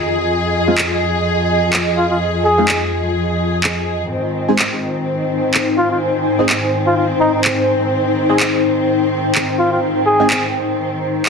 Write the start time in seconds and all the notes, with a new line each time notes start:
Already playing: F2 D#3 F4 G#4 D#5 G#5
0.30 F3
0.68 G#3 C4 D#4 F4
0.78 clap
1.73 clap
1.97 F4
2.10 F4
2.44 G#4
2.58 G#3 C4 D#4 F4
2.68 clap
3.64 clap
4.11 G#2 D#3 C4 D#4
4.39 C5
4.48 G#3 C4 D#4 G#4
4.59 clap
4.99 G#5
5.54 clap
5.78 F4
5.91 F4
6.39 G#3 C4 D#4 G#4
6.49 clap
6.86 F4
6.97 F4
7.20 D#4
7.34 D#4
7.45 clap
7.89 G5
8.29 G#3 C4 D#4 G#4
8.40 clap
9.35 clap
9.59 F4
9.72 F4
10.06 G#4
10.20 G#3 C4 D#4 G#4
10.30 clap
11.26 clap